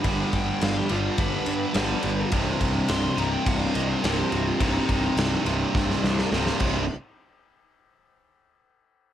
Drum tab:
CC |----------------|----------------|--------------x-|----------------|
RD |x-x-x-x-x-x-x-x-|x-x-x-x-x-x-x-x-|x-x-x-x---------|----------------|
SD |----o-------o---|----o-------o---|----o---oooooo--|----------------|
BD |o-o-----o-------|o-o-----o-------|o-o-----o-----o-|----------------|